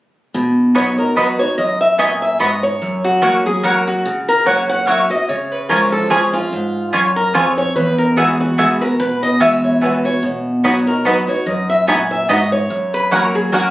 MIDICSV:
0, 0, Header, 1, 6, 480
1, 0, Start_track
1, 0, Key_signature, 5, "major"
1, 0, Tempo, 412088
1, 400, Time_signature, 3, 2, 24, 8
1, 15964, End_track
2, 0, Start_track
2, 0, Title_t, "Steel-string acoustic guitar"
2, 0, Program_c, 0, 25
2, 881, Note_on_c, 0, 73, 81
2, 1140, Note_off_c, 0, 73, 0
2, 1147, Note_on_c, 0, 70, 77
2, 1358, Note_off_c, 0, 70, 0
2, 1358, Note_on_c, 0, 71, 76
2, 1618, Note_off_c, 0, 71, 0
2, 1623, Note_on_c, 0, 73, 84
2, 1831, Note_off_c, 0, 73, 0
2, 1837, Note_on_c, 0, 75, 71
2, 2097, Note_off_c, 0, 75, 0
2, 2105, Note_on_c, 0, 76, 83
2, 2311, Note_off_c, 0, 76, 0
2, 2316, Note_on_c, 0, 80, 94
2, 2577, Note_off_c, 0, 80, 0
2, 2586, Note_on_c, 0, 76, 72
2, 2791, Note_off_c, 0, 76, 0
2, 2796, Note_on_c, 0, 75, 76
2, 3057, Note_off_c, 0, 75, 0
2, 3063, Note_on_c, 0, 73, 90
2, 4191, Note_off_c, 0, 73, 0
2, 4992, Note_on_c, 0, 70, 101
2, 5195, Note_off_c, 0, 70, 0
2, 5199, Note_on_c, 0, 73, 78
2, 5458, Note_off_c, 0, 73, 0
2, 5468, Note_on_c, 0, 78, 102
2, 5683, Note_off_c, 0, 78, 0
2, 5683, Note_on_c, 0, 76, 87
2, 5940, Note_off_c, 0, 76, 0
2, 5947, Note_on_c, 0, 75, 82
2, 6158, Note_off_c, 0, 75, 0
2, 6158, Note_on_c, 0, 73, 80
2, 6425, Note_off_c, 0, 73, 0
2, 6425, Note_on_c, 0, 71, 93
2, 6626, Note_off_c, 0, 71, 0
2, 6631, Note_on_c, 0, 70, 83
2, 6894, Note_off_c, 0, 70, 0
2, 6899, Note_on_c, 0, 69, 81
2, 7104, Note_off_c, 0, 69, 0
2, 7108, Note_on_c, 0, 68, 82
2, 7373, Note_off_c, 0, 68, 0
2, 7376, Note_on_c, 0, 65, 85
2, 8027, Note_off_c, 0, 65, 0
2, 8343, Note_on_c, 0, 70, 92
2, 8551, Note_off_c, 0, 70, 0
2, 8560, Note_on_c, 0, 68, 78
2, 8818, Note_off_c, 0, 68, 0
2, 8824, Note_on_c, 0, 73, 101
2, 9030, Note_off_c, 0, 73, 0
2, 9034, Note_on_c, 0, 71, 83
2, 9294, Note_off_c, 0, 71, 0
2, 9298, Note_on_c, 0, 70, 87
2, 9508, Note_off_c, 0, 70, 0
2, 9518, Note_on_c, 0, 68, 82
2, 9777, Note_off_c, 0, 68, 0
2, 9789, Note_on_c, 0, 66, 76
2, 10003, Note_off_c, 0, 66, 0
2, 10003, Note_on_c, 0, 68, 75
2, 10266, Note_off_c, 0, 68, 0
2, 10266, Note_on_c, 0, 70, 88
2, 10472, Note_off_c, 0, 70, 0
2, 10479, Note_on_c, 0, 71, 91
2, 10738, Note_off_c, 0, 71, 0
2, 10749, Note_on_c, 0, 75, 95
2, 10958, Note_off_c, 0, 75, 0
2, 10958, Note_on_c, 0, 76, 89
2, 11218, Note_off_c, 0, 76, 0
2, 11228, Note_on_c, 0, 73, 84
2, 11433, Note_off_c, 0, 73, 0
2, 11440, Note_on_c, 0, 71, 89
2, 11699, Note_off_c, 0, 71, 0
2, 11708, Note_on_c, 0, 73, 83
2, 11913, Note_off_c, 0, 73, 0
2, 12399, Note_on_c, 0, 73, 79
2, 12659, Note_off_c, 0, 73, 0
2, 12664, Note_on_c, 0, 70, 85
2, 12875, Note_off_c, 0, 70, 0
2, 12875, Note_on_c, 0, 71, 77
2, 13137, Note_off_c, 0, 71, 0
2, 13146, Note_on_c, 0, 73, 82
2, 13352, Note_off_c, 0, 73, 0
2, 13357, Note_on_c, 0, 75, 79
2, 13618, Note_off_c, 0, 75, 0
2, 13622, Note_on_c, 0, 76, 87
2, 13831, Note_off_c, 0, 76, 0
2, 13839, Note_on_c, 0, 80, 92
2, 14099, Note_off_c, 0, 80, 0
2, 14105, Note_on_c, 0, 76, 85
2, 14313, Note_off_c, 0, 76, 0
2, 14322, Note_on_c, 0, 75, 84
2, 14580, Note_off_c, 0, 75, 0
2, 14584, Note_on_c, 0, 73, 81
2, 15714, Note_off_c, 0, 73, 0
2, 15964, End_track
3, 0, Start_track
3, 0, Title_t, "Mandolin"
3, 0, Program_c, 1, 25
3, 870, Note_on_c, 1, 59, 89
3, 874, Note_on_c, 1, 66, 89
3, 877, Note_on_c, 1, 75, 88
3, 881, Note_on_c, 1, 83, 87
3, 992, Note_off_c, 1, 59, 0
3, 994, Note_off_c, 1, 66, 0
3, 995, Note_off_c, 1, 75, 0
3, 997, Note_off_c, 1, 83, 0
3, 1350, Note_on_c, 1, 59, 72
3, 1356, Note_on_c, 1, 66, 84
3, 1360, Note_on_c, 1, 75, 92
3, 1362, Note_on_c, 1, 83, 98
3, 1472, Note_off_c, 1, 59, 0
3, 1475, Note_off_c, 1, 66, 0
3, 1477, Note_off_c, 1, 75, 0
3, 1478, Note_off_c, 1, 83, 0
3, 2311, Note_on_c, 1, 59, 91
3, 2315, Note_on_c, 1, 66, 84
3, 2319, Note_on_c, 1, 75, 89
3, 2322, Note_on_c, 1, 83, 92
3, 2432, Note_off_c, 1, 59, 0
3, 2434, Note_off_c, 1, 66, 0
3, 2436, Note_off_c, 1, 75, 0
3, 2438, Note_off_c, 1, 83, 0
3, 2790, Note_on_c, 1, 59, 86
3, 2795, Note_on_c, 1, 66, 85
3, 2796, Note_on_c, 1, 75, 82
3, 2799, Note_on_c, 1, 83, 85
3, 2912, Note_off_c, 1, 59, 0
3, 2914, Note_off_c, 1, 66, 0
3, 2915, Note_off_c, 1, 75, 0
3, 2916, Note_off_c, 1, 83, 0
3, 3748, Note_on_c, 1, 58, 84
3, 3752, Note_on_c, 1, 66, 75
3, 3753, Note_on_c, 1, 73, 91
3, 3758, Note_on_c, 1, 78, 90
3, 3871, Note_off_c, 1, 58, 0
3, 3873, Note_off_c, 1, 66, 0
3, 3873, Note_off_c, 1, 73, 0
3, 3876, Note_off_c, 1, 78, 0
3, 4231, Note_on_c, 1, 58, 79
3, 4234, Note_on_c, 1, 66, 83
3, 4238, Note_on_c, 1, 73, 85
3, 4241, Note_on_c, 1, 78, 87
3, 4352, Note_off_c, 1, 58, 0
3, 4354, Note_off_c, 1, 66, 0
3, 4355, Note_off_c, 1, 73, 0
3, 4357, Note_off_c, 1, 78, 0
3, 5192, Note_on_c, 1, 58, 72
3, 5197, Note_on_c, 1, 66, 87
3, 5199, Note_on_c, 1, 73, 84
3, 5202, Note_on_c, 1, 78, 91
3, 5312, Note_off_c, 1, 58, 0
3, 5315, Note_off_c, 1, 66, 0
3, 5316, Note_off_c, 1, 73, 0
3, 5318, Note_off_c, 1, 78, 0
3, 5670, Note_on_c, 1, 58, 76
3, 5673, Note_on_c, 1, 66, 83
3, 5677, Note_on_c, 1, 73, 91
3, 5680, Note_on_c, 1, 78, 89
3, 5791, Note_off_c, 1, 58, 0
3, 5793, Note_off_c, 1, 66, 0
3, 5795, Note_off_c, 1, 73, 0
3, 5796, Note_off_c, 1, 78, 0
3, 6628, Note_on_c, 1, 61, 79
3, 6631, Note_on_c, 1, 65, 82
3, 6635, Note_on_c, 1, 73, 82
3, 6638, Note_on_c, 1, 80, 82
3, 6750, Note_off_c, 1, 61, 0
3, 6752, Note_off_c, 1, 65, 0
3, 6754, Note_off_c, 1, 73, 0
3, 6755, Note_off_c, 1, 80, 0
3, 7105, Note_on_c, 1, 61, 76
3, 7109, Note_on_c, 1, 65, 85
3, 7113, Note_on_c, 1, 73, 84
3, 7114, Note_on_c, 1, 80, 91
3, 7229, Note_off_c, 1, 61, 0
3, 7231, Note_off_c, 1, 65, 0
3, 7233, Note_off_c, 1, 73, 0
3, 7233, Note_off_c, 1, 80, 0
3, 8068, Note_on_c, 1, 61, 81
3, 8072, Note_on_c, 1, 65, 85
3, 8076, Note_on_c, 1, 73, 92
3, 8080, Note_on_c, 1, 80, 89
3, 8190, Note_off_c, 1, 61, 0
3, 8192, Note_off_c, 1, 65, 0
3, 8194, Note_off_c, 1, 73, 0
3, 8196, Note_off_c, 1, 80, 0
3, 8548, Note_on_c, 1, 61, 85
3, 8555, Note_on_c, 1, 65, 92
3, 8557, Note_on_c, 1, 73, 95
3, 8559, Note_on_c, 1, 80, 97
3, 8671, Note_off_c, 1, 61, 0
3, 8674, Note_off_c, 1, 65, 0
3, 8675, Note_off_c, 1, 73, 0
3, 8676, Note_off_c, 1, 80, 0
3, 9514, Note_on_c, 1, 59, 78
3, 9517, Note_on_c, 1, 66, 82
3, 9521, Note_on_c, 1, 76, 79
3, 9523, Note_on_c, 1, 80, 82
3, 9633, Note_off_c, 1, 59, 0
3, 9635, Note_off_c, 1, 66, 0
3, 9637, Note_off_c, 1, 76, 0
3, 9638, Note_off_c, 1, 80, 0
3, 9993, Note_on_c, 1, 59, 84
3, 9996, Note_on_c, 1, 66, 89
3, 9999, Note_on_c, 1, 76, 89
3, 10003, Note_on_c, 1, 80, 92
3, 10113, Note_off_c, 1, 59, 0
3, 10114, Note_off_c, 1, 66, 0
3, 10116, Note_off_c, 1, 76, 0
3, 10118, Note_off_c, 1, 80, 0
3, 10949, Note_on_c, 1, 59, 79
3, 10954, Note_on_c, 1, 66, 93
3, 10957, Note_on_c, 1, 76, 86
3, 10960, Note_on_c, 1, 80, 84
3, 11071, Note_off_c, 1, 59, 0
3, 11074, Note_off_c, 1, 66, 0
3, 11075, Note_off_c, 1, 76, 0
3, 11077, Note_off_c, 1, 80, 0
3, 11430, Note_on_c, 1, 59, 79
3, 11434, Note_on_c, 1, 66, 83
3, 11438, Note_on_c, 1, 76, 81
3, 11440, Note_on_c, 1, 80, 90
3, 11551, Note_off_c, 1, 59, 0
3, 11553, Note_off_c, 1, 66, 0
3, 11556, Note_off_c, 1, 76, 0
3, 11557, Note_off_c, 1, 80, 0
3, 12390, Note_on_c, 1, 59, 82
3, 12395, Note_on_c, 1, 66, 86
3, 12396, Note_on_c, 1, 75, 81
3, 12399, Note_on_c, 1, 83, 97
3, 12512, Note_off_c, 1, 59, 0
3, 12514, Note_off_c, 1, 66, 0
3, 12515, Note_off_c, 1, 75, 0
3, 12516, Note_off_c, 1, 83, 0
3, 12871, Note_on_c, 1, 59, 81
3, 12873, Note_on_c, 1, 66, 91
3, 12877, Note_on_c, 1, 75, 83
3, 12882, Note_on_c, 1, 83, 96
3, 12992, Note_off_c, 1, 59, 0
3, 12994, Note_off_c, 1, 66, 0
3, 12995, Note_off_c, 1, 75, 0
3, 12998, Note_off_c, 1, 83, 0
3, 13831, Note_on_c, 1, 59, 89
3, 13835, Note_on_c, 1, 66, 89
3, 13840, Note_on_c, 1, 75, 90
3, 13842, Note_on_c, 1, 83, 90
3, 13953, Note_off_c, 1, 59, 0
3, 13955, Note_off_c, 1, 66, 0
3, 13957, Note_off_c, 1, 75, 0
3, 13959, Note_off_c, 1, 83, 0
3, 14312, Note_on_c, 1, 59, 82
3, 14316, Note_on_c, 1, 66, 86
3, 14318, Note_on_c, 1, 75, 91
3, 14322, Note_on_c, 1, 83, 92
3, 14434, Note_off_c, 1, 59, 0
3, 14436, Note_off_c, 1, 66, 0
3, 14437, Note_off_c, 1, 75, 0
3, 14439, Note_off_c, 1, 83, 0
3, 15273, Note_on_c, 1, 58, 83
3, 15278, Note_on_c, 1, 66, 87
3, 15281, Note_on_c, 1, 73, 83
3, 15284, Note_on_c, 1, 78, 101
3, 15395, Note_off_c, 1, 58, 0
3, 15397, Note_off_c, 1, 66, 0
3, 15399, Note_off_c, 1, 73, 0
3, 15400, Note_off_c, 1, 78, 0
3, 15753, Note_on_c, 1, 58, 83
3, 15755, Note_on_c, 1, 66, 84
3, 15760, Note_on_c, 1, 73, 82
3, 15762, Note_on_c, 1, 78, 92
3, 15875, Note_off_c, 1, 58, 0
3, 15876, Note_off_c, 1, 66, 0
3, 15879, Note_off_c, 1, 73, 0
3, 15880, Note_off_c, 1, 78, 0
3, 15964, End_track
4, 0, Start_track
4, 0, Title_t, "Resonator guitar played with a steel bar"
4, 0, Program_c, 2, 25
4, 3547, Note_on_c, 2, 66, 86
4, 4027, Note_off_c, 2, 66, 0
4, 4031, Note_on_c, 2, 68, 98
4, 4238, Note_off_c, 2, 68, 0
4, 4242, Note_on_c, 2, 70, 106
4, 4513, Note_on_c, 2, 66, 86
4, 4516, Note_off_c, 2, 70, 0
4, 4832, Note_off_c, 2, 66, 0
4, 15072, Note_on_c, 2, 71, 101
4, 15281, Note_off_c, 2, 71, 0
4, 15285, Note_on_c, 2, 70, 100
4, 15533, Note_off_c, 2, 70, 0
4, 15552, Note_on_c, 2, 68, 86
4, 15770, Note_off_c, 2, 68, 0
4, 15771, Note_on_c, 2, 66, 73
4, 15964, Note_off_c, 2, 66, 0
4, 15964, End_track
5, 0, Start_track
5, 0, Title_t, "Five-string banjo"
5, 0, Program_c, 3, 105
5, 12403, Note_on_c, 3, 59, 68
5, 12408, Note_on_c, 3, 63, 59
5, 12410, Note_on_c, 3, 66, 67
5, 12519, Note_off_c, 3, 59, 0
5, 12521, Note_off_c, 3, 63, 0
5, 12522, Note_off_c, 3, 66, 0
5, 12892, Note_on_c, 3, 59, 65
5, 12897, Note_on_c, 3, 63, 63
5, 12899, Note_on_c, 3, 66, 64
5, 13004, Note_off_c, 3, 59, 0
5, 13006, Note_off_c, 3, 63, 0
5, 13007, Note_off_c, 3, 66, 0
5, 13846, Note_on_c, 3, 59, 63
5, 13852, Note_on_c, 3, 63, 66
5, 13853, Note_on_c, 3, 66, 64
5, 13961, Note_off_c, 3, 59, 0
5, 13963, Note_off_c, 3, 63, 0
5, 13964, Note_off_c, 3, 66, 0
5, 14331, Note_on_c, 3, 59, 65
5, 14338, Note_on_c, 3, 63, 63
5, 14339, Note_on_c, 3, 66, 63
5, 14444, Note_off_c, 3, 59, 0
5, 14446, Note_off_c, 3, 63, 0
5, 14448, Note_off_c, 3, 66, 0
5, 15289, Note_on_c, 3, 61, 65
5, 15295, Note_on_c, 3, 66, 64
5, 15318, Note_off_c, 3, 66, 0
5, 15404, Note_off_c, 3, 61, 0
5, 15770, Note_on_c, 3, 61, 64
5, 15777, Note_on_c, 3, 66, 66
5, 15801, Note_off_c, 3, 66, 0
5, 15885, Note_off_c, 3, 61, 0
5, 15964, End_track
6, 0, Start_track
6, 0, Title_t, "Steel-string acoustic guitar"
6, 0, Program_c, 4, 25
6, 401, Note_on_c, 4, 47, 88
6, 876, Note_on_c, 4, 54, 56
6, 887, Note_on_c, 4, 59, 66
6, 895, Note_on_c, 4, 63, 54
6, 905, Note_on_c, 4, 66, 58
6, 1124, Note_off_c, 4, 66, 0
6, 1135, Note_off_c, 4, 54, 0
6, 1138, Note_on_c, 4, 66, 59
6, 1140, Note_off_c, 4, 59, 0
6, 1144, Note_off_c, 4, 63, 0
6, 1165, Note_on_c, 4, 63, 46
6, 1318, Note_off_c, 4, 47, 0
6, 1346, Note_off_c, 4, 66, 0
6, 1350, Note_on_c, 4, 54, 58
6, 1356, Note_off_c, 4, 63, 0
6, 1362, Note_on_c, 4, 59, 56
6, 1370, Note_on_c, 4, 63, 62
6, 1378, Note_on_c, 4, 66, 66
6, 1606, Note_off_c, 4, 66, 0
6, 1612, Note_off_c, 4, 54, 0
6, 1618, Note_off_c, 4, 59, 0
6, 1620, Note_on_c, 4, 66, 59
6, 1621, Note_off_c, 4, 63, 0
6, 1649, Note_on_c, 4, 63, 53
6, 1827, Note_off_c, 4, 66, 0
6, 1838, Note_on_c, 4, 42, 88
6, 1842, Note_off_c, 4, 63, 0
6, 2313, Note_on_c, 4, 46, 82
6, 2756, Note_off_c, 4, 42, 0
6, 2775, Note_off_c, 4, 46, 0
6, 2794, Note_on_c, 4, 44, 91
6, 3255, Note_off_c, 4, 44, 0
6, 3281, Note_on_c, 4, 42, 92
6, 3749, Note_on_c, 4, 54, 62
6, 3761, Note_on_c, 4, 58, 58
6, 3770, Note_on_c, 4, 61, 63
6, 3778, Note_on_c, 4, 66, 55
6, 4009, Note_off_c, 4, 66, 0
6, 4011, Note_off_c, 4, 54, 0
6, 4017, Note_off_c, 4, 58, 0
6, 4021, Note_off_c, 4, 61, 0
6, 4023, Note_on_c, 4, 66, 58
6, 4052, Note_on_c, 4, 61, 47
6, 4197, Note_off_c, 4, 42, 0
6, 4228, Note_off_c, 4, 66, 0
6, 4233, Note_on_c, 4, 54, 65
6, 4236, Note_off_c, 4, 61, 0
6, 4239, Note_on_c, 4, 58, 59
6, 4250, Note_on_c, 4, 61, 61
6, 4260, Note_on_c, 4, 66, 65
6, 4694, Note_off_c, 4, 54, 0
6, 4698, Note_off_c, 4, 58, 0
6, 4703, Note_off_c, 4, 61, 0
6, 4708, Note_off_c, 4, 66, 0
6, 4722, Note_on_c, 4, 49, 91
6, 5192, Note_on_c, 4, 54, 60
6, 5204, Note_on_c, 4, 58, 53
6, 5213, Note_on_c, 4, 61, 59
6, 5223, Note_on_c, 4, 66, 56
6, 5638, Note_off_c, 4, 49, 0
6, 5654, Note_off_c, 4, 54, 0
6, 5660, Note_off_c, 4, 58, 0
6, 5665, Note_off_c, 4, 61, 0
6, 5669, Note_off_c, 4, 66, 0
6, 5676, Note_on_c, 4, 54, 65
6, 5687, Note_on_c, 4, 58, 56
6, 5694, Note_on_c, 4, 61, 62
6, 5701, Note_on_c, 4, 66, 65
6, 5923, Note_off_c, 4, 66, 0
6, 5934, Note_off_c, 4, 54, 0
6, 5937, Note_on_c, 4, 66, 63
6, 5940, Note_off_c, 4, 58, 0
6, 5943, Note_off_c, 4, 61, 0
6, 5962, Note_on_c, 4, 61, 46
6, 6146, Note_off_c, 4, 66, 0
6, 6158, Note_off_c, 4, 61, 0
6, 6164, Note_on_c, 4, 49, 86
6, 6631, Note_on_c, 4, 53, 51
6, 6643, Note_on_c, 4, 56, 56
6, 6648, Note_on_c, 4, 61, 62
6, 6659, Note_on_c, 4, 65, 60
6, 7079, Note_off_c, 4, 49, 0
6, 7093, Note_off_c, 4, 53, 0
6, 7099, Note_off_c, 4, 56, 0
6, 7102, Note_off_c, 4, 61, 0
6, 7107, Note_off_c, 4, 65, 0
6, 7109, Note_on_c, 4, 53, 58
6, 7118, Note_on_c, 4, 56, 55
6, 7129, Note_on_c, 4, 61, 61
6, 7135, Note_on_c, 4, 65, 60
6, 7369, Note_off_c, 4, 65, 0
6, 7370, Note_off_c, 4, 53, 0
6, 7375, Note_off_c, 4, 56, 0
6, 7381, Note_off_c, 4, 61, 0
6, 7383, Note_on_c, 4, 65, 64
6, 7408, Note_on_c, 4, 61, 52
6, 7589, Note_off_c, 4, 65, 0
6, 7600, Note_on_c, 4, 44, 93
6, 7601, Note_off_c, 4, 61, 0
6, 8080, Note_off_c, 4, 44, 0
6, 8084, Note_on_c, 4, 42, 78
6, 8540, Note_off_c, 4, 42, 0
6, 8561, Note_on_c, 4, 41, 86
6, 9018, Note_off_c, 4, 41, 0
6, 9040, Note_on_c, 4, 40, 92
6, 9508, Note_on_c, 4, 52, 62
6, 9519, Note_on_c, 4, 56, 55
6, 9528, Note_on_c, 4, 59, 64
6, 9534, Note_on_c, 4, 66, 60
6, 9957, Note_off_c, 4, 40, 0
6, 9972, Note_off_c, 4, 52, 0
6, 9978, Note_off_c, 4, 56, 0
6, 9982, Note_off_c, 4, 59, 0
6, 9985, Note_off_c, 4, 66, 0
6, 9990, Note_on_c, 4, 52, 62
6, 10000, Note_on_c, 4, 56, 58
6, 10012, Note_on_c, 4, 59, 67
6, 10018, Note_on_c, 4, 66, 72
6, 10250, Note_off_c, 4, 66, 0
6, 10251, Note_off_c, 4, 52, 0
6, 10256, Note_off_c, 4, 56, 0
6, 10262, Note_off_c, 4, 59, 0
6, 10264, Note_on_c, 4, 66, 56
6, 10290, Note_on_c, 4, 59, 54
6, 10469, Note_off_c, 4, 66, 0
6, 10479, Note_on_c, 4, 47, 91
6, 10482, Note_off_c, 4, 59, 0
6, 10953, Note_on_c, 4, 52, 52
6, 10962, Note_on_c, 4, 56, 60
6, 10972, Note_on_c, 4, 59, 60
6, 10978, Note_on_c, 4, 66, 64
6, 11397, Note_off_c, 4, 47, 0
6, 11415, Note_off_c, 4, 52, 0
6, 11419, Note_off_c, 4, 56, 0
6, 11424, Note_off_c, 4, 59, 0
6, 11427, Note_off_c, 4, 66, 0
6, 11436, Note_on_c, 4, 52, 58
6, 11442, Note_on_c, 4, 56, 55
6, 11455, Note_on_c, 4, 59, 61
6, 11463, Note_on_c, 4, 66, 68
6, 11684, Note_off_c, 4, 66, 0
6, 11694, Note_off_c, 4, 52, 0
6, 11697, Note_off_c, 4, 56, 0
6, 11698, Note_on_c, 4, 66, 62
6, 11704, Note_off_c, 4, 59, 0
6, 11723, Note_on_c, 4, 59, 47
6, 11906, Note_off_c, 4, 66, 0
6, 11914, Note_on_c, 4, 47, 89
6, 11919, Note_off_c, 4, 59, 0
6, 12391, Note_on_c, 4, 54, 53
6, 12400, Note_on_c, 4, 59, 54
6, 12408, Note_on_c, 4, 63, 64
6, 12417, Note_on_c, 4, 66, 64
6, 12645, Note_off_c, 4, 66, 0
6, 12652, Note_off_c, 4, 54, 0
6, 12657, Note_off_c, 4, 59, 0
6, 12659, Note_on_c, 4, 66, 54
6, 12661, Note_off_c, 4, 63, 0
6, 12685, Note_on_c, 4, 63, 47
6, 12834, Note_off_c, 4, 47, 0
6, 12867, Note_off_c, 4, 66, 0
6, 12870, Note_on_c, 4, 54, 65
6, 12875, Note_off_c, 4, 63, 0
6, 12881, Note_on_c, 4, 59, 63
6, 12889, Note_on_c, 4, 63, 64
6, 12896, Note_on_c, 4, 66, 65
6, 13123, Note_off_c, 4, 66, 0
6, 13132, Note_off_c, 4, 54, 0
6, 13136, Note_on_c, 4, 66, 62
6, 13137, Note_off_c, 4, 59, 0
6, 13141, Note_off_c, 4, 63, 0
6, 13163, Note_on_c, 4, 63, 48
6, 13346, Note_off_c, 4, 66, 0
6, 13351, Note_on_c, 4, 42, 90
6, 13359, Note_off_c, 4, 63, 0
6, 13837, Note_on_c, 4, 46, 78
6, 14274, Note_off_c, 4, 42, 0
6, 14298, Note_off_c, 4, 46, 0
6, 14319, Note_on_c, 4, 44, 91
6, 14779, Note_off_c, 4, 44, 0
6, 14796, Note_on_c, 4, 42, 88
6, 15275, Note_on_c, 4, 54, 54
6, 15288, Note_on_c, 4, 58, 64
6, 15295, Note_on_c, 4, 61, 55
6, 15303, Note_on_c, 4, 66, 61
6, 15717, Note_off_c, 4, 42, 0
6, 15731, Note_off_c, 4, 54, 0
6, 15745, Note_off_c, 4, 58, 0
6, 15745, Note_on_c, 4, 54, 65
6, 15748, Note_off_c, 4, 61, 0
6, 15752, Note_off_c, 4, 66, 0
6, 15760, Note_on_c, 4, 58, 59
6, 15769, Note_on_c, 4, 61, 70
6, 15775, Note_on_c, 4, 66, 69
6, 15964, Note_off_c, 4, 54, 0
6, 15964, Note_off_c, 4, 58, 0
6, 15964, Note_off_c, 4, 61, 0
6, 15964, Note_off_c, 4, 66, 0
6, 15964, End_track
0, 0, End_of_file